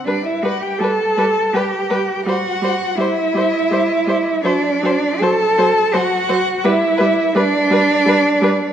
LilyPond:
<<
  \new Staff \with { instrumentName = "Violin" } { \time 3/4 \key g \major \tempo 4 = 83 d''16 e''16 fis''16 g''16 a''4 g''4 | fis''4 e''2 | d''4 a''4 fis''4 | e''4 d''2 | }
  \new Staff \with { instrumentName = "Violin" } { \time 3/4 \key g \major b'8 b'8 b'8 b'8 b'8 b'8 | c''8 c''8 c''8 c''8 c''8 c''8 | c''8 c''8 c''8 c''8 c''8 c''8 | b'8 b'8 b'8 b'8 b'8 b'8 | }
  \new Staff \with { instrumentName = "Cello" } { \time 3/4 \key g \major d'16 e'16 fis'16 g'16 a'4 g'4 | fis'4 e'2 | d'4 a'4 fis'4 | e'4 d'2 | }
  \new Staff \with { instrumentName = "Viola" } { \clef bass \time 3/4 \key g \major g8 g8 g8 g8 g8 g8 | g8 g8 g8 g8 g8 g8 | fis8 fis8 fis8 fis8 fis8 fis8 | g8 g8 g8 g8 g8 g8 | }
>>